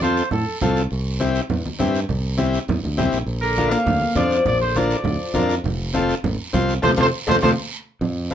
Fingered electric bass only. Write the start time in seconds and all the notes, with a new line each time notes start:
Already playing: F2
0.33 A2
0.63 C2
0.92 C2
1.50 E2
1.81 G2
2.10 C2
2.69 E2
2.84 D2
2.98 C2
3.13 A#1
3.26 A#1
3.86 D2
4.15 F2
4.46 A#1
5.04 D2
5.34 F2
5.64 F1
6.24 A1
6.54 C2
6.83 F2
6.98 F2
7.28 F2
7.43 F2
8.01 F2